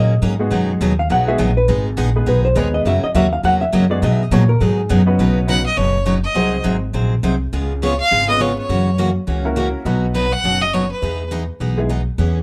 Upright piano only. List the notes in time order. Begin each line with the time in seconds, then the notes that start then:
0.39 G#3 B3 D#4 F#4 G#4
1.27 G#3 B3 D#4 F#4 G#4
2.16 G#3 B3 D#4 G#4 B4
2.56 G#3 B3 D#4 G#4 B4
3.90 G#3 B3 D#4 F#4 G#4
5.06 B3 C#4 D#4 F#4 B4
5.47 B3 C#4 D#4 F#4 B4
6.35 C4 D#4 F#4 G#4 C5
8.28 B3 C#4 F4 G#4 B4
9.45 A#3 C#4 E4 F#4 A#4
9.85 F#3 B3 D#4 F#4 B4
11.77 G#3 B3 D#4 E4 G#4